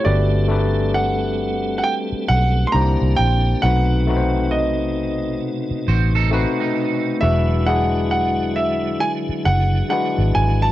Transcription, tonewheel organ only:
X:1
M:4/4
L:1/8
Q:"Swing 16ths" 1/4=67
K:Bphr
V:1 name="Tonewheel organ"
[G,A,CA]6 [D,_B,CE]2 | [B,,C,A,^D]8 | [D,F,^G,E]8 |]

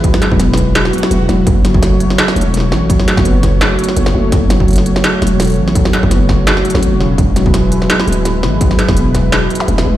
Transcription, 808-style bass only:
X:1
M:4/4
L:1/16
Q:"Swing 16ths" 1/4=168
K:F#m
V:1 name="808-style bass" clef=bass
G,,, z2 E,,,6- E,,, z2 E,,,2 E,,,2 | F,,,8 z2 E,,,4 A,,,2- | A,,, z2 F,,,6- F,,, z2 F,,,2 F,,,2 | F,,,8 z2 E,,,4 A,,,2- |
A,,, z2 F,,,6- F,,, z G,,,2 E,,,3 | E,,,8 z2 D,,,4 G,,,2- | G,,, z2 E,,,6- E,,, z2 E,,,2 E,,,2 |]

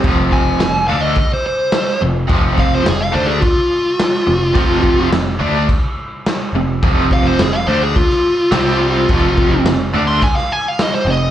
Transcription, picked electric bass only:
X:1
M:4/4
L:1/8
Q:1/4=106
K:F
V:1 name="Picked electric bass" clef=bass
F,,,2 F,,, D,, z3 F,,, | F,,,2 F,,, D,, z3 F,,, | F,,,2 F,,, D,, z3 F,,, | F,,,2 F,,, D,, z2 C,,2 |
F,,,2 F,,, D,, z3 F,,, |]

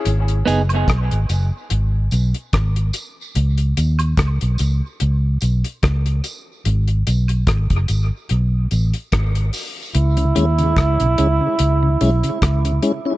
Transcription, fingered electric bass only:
X:1
M:4/4
L:1/16
Q:"Swing 16ths" 1/4=73
K:C#m
V:1 name="Fingered electric bass" clef=bass
G,,,2 F,,,2 B,,, G,,, F,,, z G,,,2 B,,, z G,,,2 z2 | C,,2 D,,2 C,, B,,, C,, z C,,2 B,,, z C,,2 z2 | G,,,2 B,,,2 G,,, F,,, G,,, z B,,,2 A,,, z G,,,2 z2 | C,,2 D,,2 C,, B,,, C,, z C,,2 B,,, z C,,2 z2 |]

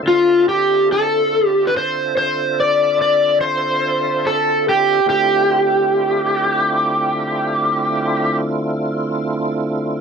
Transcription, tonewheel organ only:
X:1
M:12/8
L:1/8
Q:3/8=48
K:Ddor
V:1 name="Tonewheel organ"
[D,CFAe]12 | [D,A,CEF]12 |]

